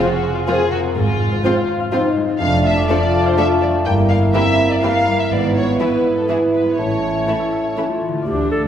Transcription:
Already playing: F2 F3 C4 G#4 C5
0.00 C4 F4 F#4
0.11 F5
0.23 C6
0.35 F4 F5
0.47 F3 C4 F4 G#4 A#4 C5
0.60 F4
0.71 C3 F#4
0.84 C4
0.95 G#1 G#2 F4 G#4
1.08 C4
1.20 F4
1.32 C5
1.44 F3 C4 F4
1.56 F5
1.68 C6
1.80 F5
1.92 F3 C4 D#4 F4 C5
2.04 F4
2.16 G#3
2.28 C4
2.40 F1 F2 A3 D4 F5
2.52 A3
2.64 F4 E5
2.77 D5
2.88 F3 A3 D4 F4 A4 D5
3.01 F5
3.13 D6
3.26 C5 F5
3.38 F3 A3 D4 A4 D5 E5
3.50 F4
3.62 F3 D5
3.74 A3
3.85 G1 G2 A#3 E4 G5
3.98 A#3
4.10 E4 F5
4.23 E5
4.33 E3 A#3 C4 E4 G4 A#4 E5
4.47 E5
4.59 E6
4.70 D5 E5
4.82 E3 A#3 E4 G4 F5
4.95 A#3
5.08 G3
5.19 A#3 E5
5.31 G#1 G#2 B3 D5
5.43 B3
5.55 E4 C#5
5.68 E5
5.80 E3 B3 E4 B4
5.92 E5
6.04 E6
6.17 A4 E5
6.29 E3 B3 E4 G#4
6.42 B3
6.54 G#3 B4
6.66 B3
6.78 A1 A2 A3 C#4 E4 C#5
6.91 A3
7.02 E4
7.15 E5
7.27 E3 A3 E4 A4
7.40 E5
7.52 E6
7.64 E5
7.77 E3 A3 C#4 E4
7.89 A3 F4
8.01 E3
8.08 D3
8.13 A3
8.18 F4
8.22 D5
8.26 D2 D4 G4
8.51 A4

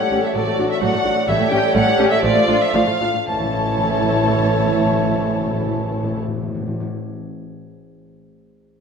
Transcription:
Already playing: G3 G4 A4 C#5 F#5
0.00 A2
0.11 A1 A2 A3 C#4 G4
0.23 A2 A3 E5
0.35 A1 A2 F#3 A3 F#4 D5
0.47 A2 A3
0.58 A1 A2 A3 D4 F#4
0.70 E5
0.81 A1 A2 F#3 A3 D5 F#5
0.92 A2 A3
1.03 A1 A2 A3 D4 F#4
1.15 A2 A3
1.27 A1 A2 G3 A3 G4 A4 C#5 E5
1.39 A2 A3
1.51 A1 A2 A3 C#4 G4 G5
1.74 A1 A2 G3 A3 F#5
1.86 A2 A3
1.98 A1 A2 A3 C#4 G4
2.10 A2 A3 E5
2.22 A1 A2 F3 A3 F4 D5
2.35 A2 A3
2.48 A1 A2 A3 D4 F4
2.61 E5
2.73 A1 A2 F3 A3 D5 F5
2.86 A2 A3
3.01 A1 A2 A3 D4 F4
3.13 A2 A3
3.27 A1 A2 E3 A3 C#4 E4 A4 C#5 A5
3.33 A2
3.39 A2
3.45 A2
3.51 A2
3.57 A2
3.64 A2
3.70 A2
3.77 A2
3.83 A2
3.89 A2
3.96 A2
4.03 A2
4.09 A2
4.15 A2
4.21 A2
4.28 A2
4.34 A2
4.40 A2
4.46 A2
4.53 A2
4.59 A2
4.66 A2
4.72 A2
4.78 A2
4.84 A2
4.90 A2
4.97 A2
5.03 A2
5.10 A2
5.16 A2
5.22 A2
5.28 A2
5.35 A2
5.41 A2
5.47 A2
5.53 A2
5.60 A2
5.66 A2
5.73 A2
5.78 A2
5.85 A2
5.91 A2
5.97 A2
6.03 A2
6.09 A2
6.15 A2
6.22 A2
6.28 A2
6.35 A2
6.41 A2
6.48 A2
6.54 A2
6.61 A2
6.67 A2
6.73 A2
6.80 A2

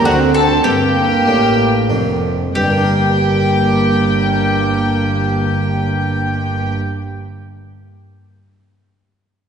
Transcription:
0.04 D2 D3 A3 C4 D4 F#4 F#5
0.34 A4 A5
0.64 G1 G2 A#3 G4 G5
1.26 A1 A2 A#3 D4
1.90 F1 F2 A#3 D4
2.55 G1 G2 A#3 G4 G5
2.63 G3
2.70 A#3
2.78 D4
2.84 A#4

